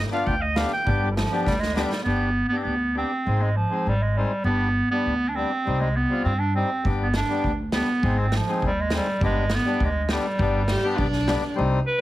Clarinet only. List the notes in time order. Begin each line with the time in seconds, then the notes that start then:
0.13 F5
0.27 G5
0.40 D#5 F5
0.56 F5
0.73 G5
1.10 G3
1.16 F3
1.47 G3
1.60 G#3
1.74 G3
2.04 B3
2.48 B3
2.57 C4
2.64 B3
2.98 C4
3.41 G#3
3.56 F3
3.88 G3
4.02 G#3
4.17 G3
4.45 B3
4.91 B3
5.29 D4
5.36 C4
5.81 G#3
5.96 B3
6.24 C4
6.39 D4
6.56 C4
7.01 B3
7.16 D4
7.74 B3
8.19 C4
8.36 F3
8.66 G3
8.81 G#3
8.96 G3
9.24 G#3
9.55 B3
9.85 G#3
10.05 G#3
10.13 G3
11.86 B4